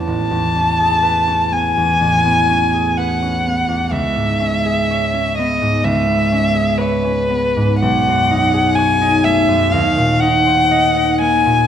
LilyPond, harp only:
\new Staff \with { instrumentName = "Harp" } { \time 4/4 \key a \lydian \tempo 4 = 62 <a,, b cis' e' b'>16 e,16 cis'16 gis'16 b'16 cis'16 b16 e,16 a,,16 b16 cis'16 gis'16 b'16 cis'16 b16 e,16 | cis,16 gis,16 cis'16 gis'16 cis''16 cis'16 b16 gis,16 cis,16 b16 cis'16 gis'16 cis''16 cis'16 b16 gis,16 | b,,16 fis,16 dis'16 gis'16 cis''16 dis'16 a16 fis,16 dis,16 ais,16 dis'16 bis'16 dis''16 dis'16 ais16 ais,16 | }